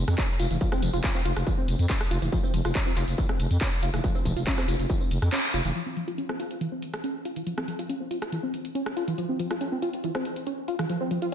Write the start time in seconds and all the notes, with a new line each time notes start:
0.08 F2, cross-stick, closed hi-hat, tambourine
0.18 C#4, kick, clap, closed hi-hat, tambourine
0.29 tambourine
0.40 F1 F4, open hi-hat, tambourine
0.51 F1 E3, closed hi-hat, tambourine
0.61 F3, kick, closed hi-hat, tambourine
0.72 C4, cross-stick, tambourine
0.82 F1 F3, open hi-hat, tambourine
0.93 F1 F4, closed hi-hat, tambourine
1.04 C#4, kick, clap, closed hi-hat, tambourine
1.15 C4, clap, tambourine
1.25 F1 F4, open hi-hat, tambourine
1.36 F1, cross-stick, closed hi-hat, tambourine
1.47 E3, kick, closed hi-hat, tambourine
1.58 C4
1.68 F1, open hi-hat, tambourine
1.79 F2, closed hi-hat, tambourine
1.90 C#4, kick, clap, closed hi-hat, tambourine
2.01 cross-stick, tambourine
2.11 F1 F4, open hi-hat, tambourine
2.22 F1 E3, closed hi-hat, tambourine
2.32 F3, kick, closed hi-hat, tambourine
2.43 C4, tambourine
2.54 F1 F3, open hi-hat, tambourine
2.65 F1 F4, cross-stick, closed hi-hat, tambourine
2.75 C#4, kick, clap, closed hi-hat, tambourine
2.86 C4, tambourine
2.97 F1 F4, clap, open hi-hat, tambourine
3.08 F1, closed hi-hat, tambourine
3.18 E3, kick, closed hi-hat, tambourine
3.29 C4, cross-stick
3.40 F1, open hi-hat, tambourine
3.51 F2, closed hi-hat, tambourine
3.61 C#4, kick, clap, closed hi-hat, tambourine
3.72 tambourine
3.82 F1 F4, open hi-hat, tambourine
3.94 F1 E3, cross-stick, closed hi-hat, tambourine
4.04 F3, kick, closed hi-hat, tambourine
4.15 C4, tambourine
4.25 F1 F3, kick, open hi-hat, tambourine
4.36 F1 F4, closed hi-hat, tambourine
4.47 C#4, kick, clap, closed hi-hat, tambourine
4.58 C4, cross-stick, clap, tambourine
4.68 F1 F4, open hi-hat, tambourine
4.79 F1, closed hi-hat, tambourine
4.90 E3, kick, closed hi-hat, tambourine
5.01 C4, tambourine
5.11 F1, open hi-hat, tambourine
5.22 F2, cross-stick, closed hi-hat, tambourine
5.32 C#4, clap, closed hi-hat, tambourine
5.44 tambourine
5.54 F1 F4, open hi-hat, tambourine
5.65 F1 E3, closed hi-hat, tambourine
5.75 F3, closed hi-hat
5.86 C4
5.97 F3, closed hi-hat
6.08 F4, closed hi-hat
6.18 C#4, closed hi-hat
6.29 C4, cross-stick
6.39 F4, closed hi-hat
6.51 closed hi-hat
6.61 E3, closed hi-hat
6.72 C4
6.82 closed hi-hat
6.94 cross-stick, closed hi-hat
7.04 C#4, closed hi-hat
7.25 F4, closed hi-hat
7.36 E3, closed hi-hat
7.46 F3, closed hi-hat
7.57 C4, cross-stick
7.68 F3, closed hi-hat
7.79 F4, closed hi-hat
7.89 C#4, closed hi-hat
8.00 C4
8.11 F4, closed hi-hat
8.22 cross-stick, closed hi-hat
8.32 E3, closed hi-hat
8.43 C4
8.54 closed hi-hat
8.65 closed hi-hat
8.75 C#4, closed hi-hat
8.86 cross-stick
8.97 F4, closed hi-hat
9.08 E3, closed hi-hat
9.18 F3, closed hi-hat
9.29 C4
9.39 F3, closed hi-hat
9.50 F4, cross-stick, closed hi-hat
9.61 C#4, closed hi-hat
9.72 C4
9.82 F4, closed hi-hat
9.93 closed hi-hat
10.04 E3, closed hi-hat
10.15 C4, cross-stick
10.25 closed hi-hat
10.36 closed hi-hat
10.47 C#4, closed hi-hat
10.68 F4, closed hi-hat
10.79 E3, cross-stick, closed hi-hat
10.89 F3, closed hi-hat
11.01 C4
11.11 F3, closed hi-hat
11.22 F4, closed hi-hat